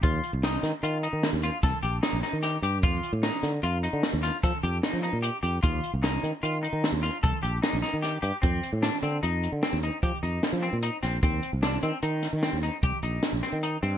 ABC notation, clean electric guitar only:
X:1
M:7/4
L:1/8
Q:1/4=150
K:Fmix
V:1 name="Clean electric guitar"
F2 E2 F E2 F A G E E G G | F2 E2 F E2 F A G E E G G | F2 E2 F E2 F A G E E G G | C2 D C E2 C E G E2 C E C |
C2 D C E2 C E G E2 C E C |]